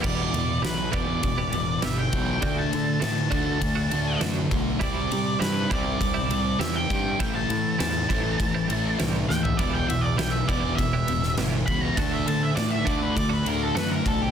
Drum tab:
CC |x---------------|----------------|----------------|----------------|
RD |--x-x-x-x-x-x-x-|x-x-x-x-x-x-x-x-|x-x-x-x-x-x-x-x-|x-x-x-x-x-x-x---|
SD |----o-------o---|----o-------o---|----o-------o---|----o-------o-o-|
FT |----------------|----------------|----------------|---------------o|
BD |o-----o-o-----o-|o-----o-o-----o-|o-----o-o-----o-|o-----o-o-------|

CC |----------------|----------------|
RD |x-x-x-x-x-x-x-x-|x-x-x-x-x-x-x-x-|
SD |----o------oo---|----o-------o---|
FT |----------------|----------------|
BD |o-----o-o-----o-|o-----o-o-----o-|